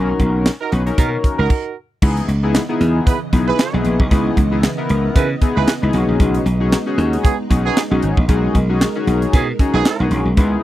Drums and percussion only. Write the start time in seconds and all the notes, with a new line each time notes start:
0.20 kick, closed hi-hat
0.46 snare, clap, closed hi-hat
0.72 closed hi-hat
0.87 closed hi-hat
0.98 kick, closed hi-hat
1.24 kick, closed hi-hat
1.50 kick, crash
2.02 kick, crash
2.17 closed hi-hat
2.29 closed hi-hat
2.55 snare, clap, closed hi-hat
2.81 closed hi-hat
3.07 kick, closed hi-hat
3.33 kick, closed hi-hat
3.59 snare, clap, closed hi-hat
3.85 closed hi-hat
4.00 kick
4.11 kick, closed hi-hat
4.37 kick, closed hi-hat
4.63 snare, clap, closed hi-hat
4.89 closed hi-hat
5.16 kick, closed hi-hat
5.42 kick, closed hi-hat
5.67 snare, clap, closed hi-hat
5.93 closed hi-hat
6.20 kick, closed hi-hat
6.35 closed hi-hat
6.46 closed hi-hat
6.72 snare, clap, closed hi-hat
6.99 closed hi-hat
7.13 closed hi-hat
7.25 kick, closed hi-hat
7.51 kick, closed hi-hat
7.77 snare, clap, closed hi-hat
8.02 closed hi-hat
8.17 kick
8.29 kick, closed hi-hat
8.55 kick, closed hi-hat
8.81 snare, clap, closed hi-hat
9.07 closed hi-hat
9.22 closed hi-hat
9.33 kick, closed hi-hat
9.59 kick, closed hi-hat
9.85 snare, clap, closed hi-hat
10.11 closed hi-hat
10.37 kick, closed hi-hat